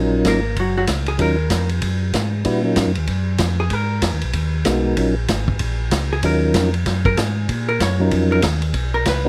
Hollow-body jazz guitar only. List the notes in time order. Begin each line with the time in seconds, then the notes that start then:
0.28 A#3 A#4
0.60 F#3 F#4
0.77 F#3 F#4
1.08 G#4
1.22 A#4
3.60 G#4
3.73 A#4
6.13 G#4
6.25 A#4
7.06 A#4
7.19 G#4
7.69 A#4
7.82 C#5
8.32 A#4
8.46 G#4
8.94 A#4
9.08 B4